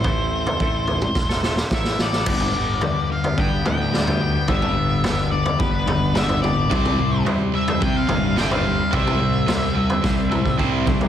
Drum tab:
CC |----------------|x---------------|----------------|----------------|
SD |--------oooooooo|------------o---|----o-------o---|------------o---|
T2 |-------o--------|-o--------o-----|-o----------o-o-|-o--------o-----|
FT |o--o--o---------|o---o--o--o--o--|o---o--o--o--o--|o---o--o--o--o--|
BD |o---o---o---o---|o-------o-------|o-------o-------|o-------o-------|

CC |----------------|
SD |----o---o-------|
T2 |-o--------o-----|
FT |o---o--o-------o|
BD |o-------o--oo-o-|